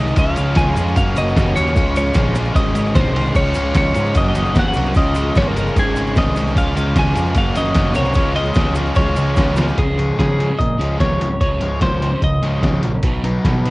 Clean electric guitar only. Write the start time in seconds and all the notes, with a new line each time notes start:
Already playing: D#5
0.19 F5
0.57 G#5
0.97 F5
1.18 D#5
1.56 C#5
1.97 C#5
2.56 D#5
2.95 C5
3.36 C#5
3.77 C#5
4.17 D#5
4.28 D#5
4.59 F#5
4.68 F#5
4.97 D#5
5.37 C#5
5.48 A#4
5.79 G#4
6.18 D#5
6.58 F5
6.99 G#5
7.38 F5
7.57 D#5
7.96 C#5
8.36 D#5
8.97 C#5
9.79 G#4
10.19 G#4
10.59 D#5
11.00 C#5
11.41 C#5
11.82 C5
12.24 D#5